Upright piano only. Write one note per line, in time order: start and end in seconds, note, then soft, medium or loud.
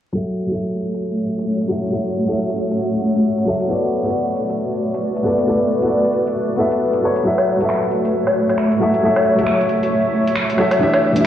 0.12 0.45 F#3 medium
0.12 0.47 F#4 medium
0.12 0.47 A4 medium
0.17 0.48 E5 medium
0.46 1.66 F#3 medium
0.46 1.67 F#4 medium
0.52 1.68 A4 medium
0.52 1.70 E5 medium
1.67 1.88 F#3 medium
1.67 1.89 F#4 medium
1.67 1.90 A4 medium
1.71 1.91 E5 medium
1.90 2.22 F#3 medium
1.90 2.24 F#4 medium
1.90 2.25 A4 medium
1.94 2.26 E5 medium
2.24 3.43 F#3 medium
2.24 3.44 F#4 medium
2.29 3.46 A4 medium
2.29 3.47 E5 medium
3.44 3.66 F#3 medium
3.44 3.67 F#4 medium
3.44 3.68 A4 medium
3.49 3.68 E5 medium
3.67 4.00 B3 medium
3.67 4.02 F#4 medium
3.67 4.02 A4 medium
3.71 4.03 D5 medium
4.01 5.21 B3 medium
4.01 5.22 F#4 medium
4.06 5.24 A4 medium
4.06 5.25 D5 medium
5.22 5.44 B3 medium
5.22 5.45 F#4 medium
5.22 5.46 A4 medium
5.27 5.46 D5 medium
5.45 5.78 B3 medium
5.45 5.80 F#4 medium
5.45 5.80 A4 medium
5.49 5.81 D5 medium
5.79 6.55 B3 medium
5.79 6.56 F#4 medium
5.84 6.57 A4 medium
5.84 6.59 D5 medium
6.56 6.99 B3 medium
6.56 7.00 F#4 medium
6.56 7.01 A4 medium
6.56 7.02 E5 medium
7.01 7.22 B3 medium
7.01 7.23 F#4 medium
7.01 7.24 A4 medium
7.05 7.24 C#5 medium
7.23 7.55 F#3 medium
7.23 7.58 F#4 medium
7.23 7.58 A4 medium
7.23 7.59 E5 medium
7.57 8.77 F#3 medium
7.57 8.78 F#4 medium
7.62 8.79 A4 medium
7.62 8.81 E5 medium
8.79 8.99 F#3 medium
8.79 9.01 F#4 medium
8.79 9.01 A4 medium
8.83 9.02 E5 medium
9.01 9.34 F#3 medium
9.01 9.35 F#4 medium
9.01 9.36 A4 medium
9.05 9.37 E5 medium
9.35 10.55 F#3 medium
9.35 10.56 F#4 medium
9.40 10.57 A4 medium
9.40 10.59 E5 medium
10.57 10.78 F#3 medium
10.57 10.79 F#4 medium
10.57 10.79 A4 medium
10.61 10.80 E5 medium
10.79 11.11 E3 medium
10.79 11.13 D4 medium
10.79 11.14 G4 medium
10.79 11.15 E5 medium
11.13 11.27 E3 medium
11.13 11.27 D4 medium
11.18 11.27 G4 medium
11.18 11.27 E5 medium